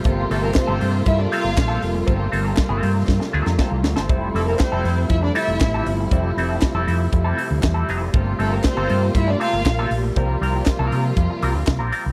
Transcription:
Already playing: C3 G3 A3 F4
0.04 G1 A#3 C4 F4 A4, kick, closed hi-hat
0.30 G1 A3 A#3 C4 F4 A4, open hi-hat
0.43 A#3 C4 F4 A4 A#4
0.54 C4 C5, muted clean electric guitar stroke, kick, snare, clap, closed hi-hat
0.67 G1 A#3 C4 F4 A4
0.80 G2 A#3 C4 F4 A4, open hi-hat
0.95 muted clean electric guitar stroke
1.06 G2 E4 E5, muted clean electric guitar stroke, kick, closed hi-hat
1.19 D4 D5, muted clean electric guitar stroke
1.32 A#3 C4 F4 A4 F5, open hi-hat
1.44 G1, muted clean electric guitar stroke
1.57 A#1, muted clean electric guitar stroke, kick, snare, clap, closed hi-hat
1.68 A#3 C4 F4 A4
1.82 F1, muted clean electric guitar stroke, open hi-hat
1.95 muted clean electric guitar stroke
2.07 G1 A#3 C4 F4 A4, kick, closed hi-hat
2.32 G1 A#3 C4 F4 A4, open hi-hat
2.43 A#3 C4 F4 A4
2.57 muted clean electric guitar stroke, kick, snare, clap, closed hi-hat
2.69 G1 A#3 C4 F4 A4
2.82 G2 A#3 C4 F4 A4, open hi-hat
2.94 muted clean electric guitar stroke
3.07 G2, muted clean electric guitar stroke, kick, snare
3.20 muted clean electric guitar stroke, snare
3.33 D2 A#3 C4 F4 A4
3.46 F2, muted clean electric guitar stroke, snare
3.59 A#3 C4 F4 A4, kick, snare
3.71 C2, muted clean electric guitar stroke
3.83 D2, muted clean electric guitar stroke, snare
3.96 G1 A#3 C4 F4 A4, snare
4.07 F1 C3 F3 G3 C4 E4 A4, kick, closed hi-hat
4.34 F1 G3 A3 C4 E4 A4, open hi-hat
4.47 G3 A#3 C4 E4 A4 A#4
4.59 C4 C5, muted clean electric guitar stroke, kick, snare, clap, closed hi-hat
4.72 F1 G3 C4 E4 A4
4.84 F2 G3 C4 E4 A4, open hi-hat
4.99 muted clean electric guitar stroke
5.09 F2 E4 E5, muted clean electric guitar stroke, kick, closed hi-hat
5.22 D4 D5, muted clean electric guitar stroke
5.35 G3 C4 E4 A4 E5, open hi-hat
5.48 F1, muted clean electric guitar stroke
5.60 A1, muted clean electric guitar stroke, kick, snare, clap, closed hi-hat
5.74 G3 C4 E4 A4
5.86 G1, muted clean electric guitar stroke, open hi-hat
6.00 muted clean electric guitar stroke
6.11 F1 G3 C4 E4 A4, kick, closed hi-hat
6.37 F1 G3 C4 E4 A4, open hi-hat
6.49 G3 C4 E4 A4
6.61 kick, snare, clap, closed hi-hat
6.74 F1 G3 C4 E4 A4
6.87 F2 G3 C4 E4 A4, open hi-hat
6.99 muted clean electric guitar stroke
7.12 F2, muted clean electric guitar stroke, kick, closed hi-hat
7.24 G3 C4 E4 A4
7.37 G3 C4 E4 A4, open hi-hat
7.49 D2, muted clean electric guitar stroke
7.62 E2, muted clean electric guitar stroke, kick, snare, clap, closed hi-hat
7.74 G3 C4 E4 A4
7.89 F1 G3 C4 E4 A4, open hi-hat
8.02 muted clean electric guitar stroke
8.14 G1 G3 A3 A#3 C4 F4 A4, kick, closed hi-hat
8.38 G1 A3 A#3 C4 F4 A4, open hi-hat
8.51 A#3 C4 F4 A4 A#4
8.64 C4 C5, muted clean electric guitar stroke, kick, snare, clap, closed hi-hat
8.77 G1 A#3 C4 F4 A4
8.89 G2 A#3 C4 F4 A4, open hi-hat
9.02 muted clean electric guitar stroke
9.15 G2 E4 E5, muted clean electric guitar stroke, kick, closed hi-hat
9.28 D4 D5, muted clean electric guitar stroke
9.40 A#3 C4 F4 A4 F5, open hi-hat
9.53 G1, muted clean electric guitar stroke
9.65 A#1, muted clean electric guitar stroke, kick, snare, clap, closed hi-hat
9.79 A#3 C4 F4 A4
9.91 A#1, muted clean electric guitar stroke, open hi-hat
10.03 muted clean electric guitar stroke
10.16 C2 C3 F3 G3 C4 F4 A#4, kick, closed hi-hat
10.41 C2 G3 C4 F4 A#4, open hi-hat
10.55 G3 C4 F4 A#4
10.66 muted clean electric guitar stroke, kick, snare, clap, closed hi-hat
10.79 C2 G3 C4 F4 A#4
10.92 C3 G3 C4 F4 A#4, open hi-hat
11.06 muted clean electric guitar stroke
11.17 F2, muted clean electric guitar stroke, kick, closed hi-hat
11.30 muted clean electric guitar stroke
11.42 C2 G3 C4 F4 A#4, open hi-hat
11.54 D2, muted clean electric guitar stroke
11.66 C2, muted clean electric guitar stroke, kick, snare, clap, closed hi-hat
11.79 A#1 G3 C4 F4 A#4
11.91 G3 C4 F4 A#4, open hi-hat
12.05 C2, muted clean electric guitar stroke

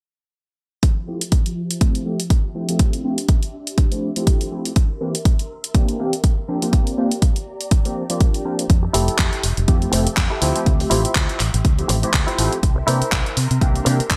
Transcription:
0.83 F3 G4 E5 A5, kick, closed hi-hat
1.07 F3 A3 C4 E4 G4
1.21 closed hi-hat
1.32 kick, closed hi-hat
1.46 closed hi-hat
1.71 closed hi-hat
1.81 F3 A3 C4 E4 G4, kick, closed hi-hat
1.95 closed hi-hat
2.05 F3 A3 C4 E4 G4
2.20 closed hi-hat
2.30 kick, closed hi-hat
2.55 F3 A3 C4 D4 E4 G4 C6
2.68 F3 A3 C4 E4 G4, closed hi-hat
2.79 kick, closed hi-hat
2.93 closed hi-hat
3.04 F3 A3 C4 E4 G4
3.18 closed hi-hat
3.29 kick, closed hi-hat
3.43 closed hi-hat
3.67 closed hi-hat
3.78 kick, closed hi-hat
3.91 F3 A3 C4 E4 G4, closed hi-hat
4.16 F3 A3 C4 E4 G4, closed hi-hat
4.27 kick, closed hi-hat
4.41 closed hi-hat
4.51 F3 A3 C4 E4 G4
4.65 closed hi-hat
4.76 A#4, kick, closed hi-hat
5.00 E3 A#3 C4 D4 G4
5.15 closed hi-hat
5.25 kick, closed hi-hat
5.39 closed hi-hat
5.64 closed hi-hat
5.74 E3 A#3 C4 D4 G4, kick, closed hi-hat
5.89 closed hi-hat
5.99 E3 A#3 C4 D4 G4
6.13 closed hi-hat
6.24 kick, closed hi-hat
6.48 F3 A#3 C4 D4 G4 D5 A#5
6.62 F3 A#3 C4 D4 G4, closed hi-hat
6.73 kick, closed hi-hat
6.87 closed hi-hat
6.97 F3 A#3 C4 D4 G4
7.12 closed hi-hat
7.22 kick, closed hi-hat
7.36 closed hi-hat
7.61 closed hi-hat
7.71 kick, closed hi-hat
7.85 F3 A#3 C4 D4 G4, closed hi-hat
8.10 F3 A#3 C4 D4 G4, closed hi-hat
8.21 kick, closed hi-hat
8.34 closed hi-hat
8.45 F3 A#3 C4 D4 G4
8.59 closed hi-hat
8.70 F2 E5 A5, kick, closed hi-hat
8.83 muted clean electric guitar stroke
8.93 F1 F3 A3 C4 E4 G4 A4, open hi-hat
9.08 muted fingered electric bass stroke, closed hi-hat
9.18 F2, kick, clap, closed hi-hat
9.33 closed hi-hat
9.43 F1, open hi-hat
9.57 F1, closed hi-hat
9.68 F2 F3 A3 C4 E4 G4, kick, closed hi-hat
9.82 closed hi-hat
9.92 F1 F3 A3 C4 E4 G4, muted clean electric guitar stroke, open hi-hat
10.06 muted clean electric guitar stroke, muted fingered electric bass stroke, closed hi-hat
10.17 F2, kick, clap, closed hi-hat
10.30 E4 G4 A4
10.41 D2 F3 A3 C4 E4 F4 G4 C5 C6, open hi-hat
10.55 F3 A3 C4 G4 E5, closed hi-hat
10.66 D2, kick, closed hi-hat
10.79 muted clean electric guitar stroke, open hi-hat
10.90 A1 F3 A3 C4 E4 F4 G4 C5, open hi-hat
11.05 muted fingered electric bass stroke, closed hi-hat
11.15 D2, kick, clap, closed hi-hat
11.29 closed hi-hat
11.40 A1, clap, open hi-hat
11.54 A1, closed hi-hat
11.65 D2, kick, closed hi-hat
11.78 F3 A3 C4 E4 G4, closed hi-hat
11.88 A1, muted clean electric guitar stroke, open hi-hat
12.02 F3 A3 C4 E4 G4, muted clean electric guitar stroke, muted fingered electric bass stroke, closed hi-hat
12.14 D2, kick, clap, closed hi-hat
12.27 E4 F4 G4 C5, closed hi-hat
12.38 A1 F3 A3 C4 E4 G4, open hi-hat
12.53 closed hi-hat
12.63 C2 A#4, kick, closed hi-hat
12.76 muted clean electric guitar stroke
12.87 C3 E3 A#3 C4 D4 E4 G4 A#4 C5, open hi-hat
13.01 muted fingered electric bass stroke, closed hi-hat
13.12 C2, kick, clap, closed hi-hat
13.26 closed hi-hat
13.37 C3, open hi-hat
13.51 C3, closed hi-hat
13.61 C2 E3 A#3 C4 D4 G4, kick, closed hi-hat
13.76 closed hi-hat
13.85 C3 E3 A#3 C4 D4 G4, muted clean electric guitar stroke, open hi-hat
13.99 muted clean electric guitar stroke, muted fingered electric bass stroke, closed hi-hat
14.10 C2, kick, clap, closed hi-hat

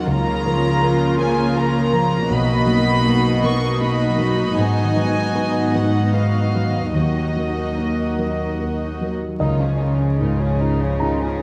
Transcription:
Already playing: A#3 C#5
0.06 C#2 C#3 A#3 F4 A#4 A#5
0.30 C#4
0.46 F3 A#4
0.55 F3
0.81 F4 A#4
1.18 F3 A#4 G#5
1.31 F4
1.55 F4 A#4 A#5
1.81 F3
1.92 F3 A#4
2.06 C#4
2.30 B1 B2 D#4 F#4 D#5 B5
2.56 B3
2.65 F#3 A#3
2.81 F#3
3.05 A#3 D#4
3.30 F#4
3.43 F#3 A#4 C#6
3.56 D#4
3.81 A#3 D#4 B5
4.08 F#3
4.18 F#3 A#3
4.33 B3
4.57 G#2 B3 G#5
4.83 D#3
4.95 F#3 B4
5.08 F#3
5.34 D#4 B4
5.60 B4
5.74 F#3 B4 F#5
5.86 D#4
6.12 D#4 B4 F5
6.39 F#3
6.55 F#3 B4
6.67 D#3
6.93 D#2 D#3 A#3 D#4 F#4 D#5
7.21 F#3
7.36 F#3 A#4
7.47 D#4
7.75 D#4 A#4
8.02 F#4
8.18 F#3 A#4
8.30 A#4
8.57 D#4 F#4 A#4
8.86 D#4
9.01 F#3 A#4
9.14 F#3
9.39 C#2 C#3 D#3 D#4 F4 D#5
9.60 F3 C#4 G#4
9.68 C#4
9.78 D#3 D#4 F4
9.95 F3 G#3 C#4
10.01 G#4
10.17 G#2 D#3 D#4 F4
10.38 F3 C#4 G#4
10.46 F4
10.57 D#3 D#4 F4
10.74 D#4
10.78 F3 C#4 G#4
11.00 D#3 G#3 D#4 F4 A#5
11.20 F3 C#4 G#4
11.29 C#4
11.39 D#3

